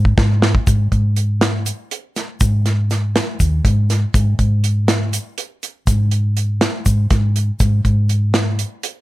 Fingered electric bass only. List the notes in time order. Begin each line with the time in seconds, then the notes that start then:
Already playing: G#2
0.18 G#2
0.67 G#2
0.92 G#2
2.41 G#2
3.40 D#2
3.65 G#2
4.14 G#2
4.39 G#2
5.87 G#2
6.86 G#2
7.10 G#2
7.60 G#2
7.85 G#2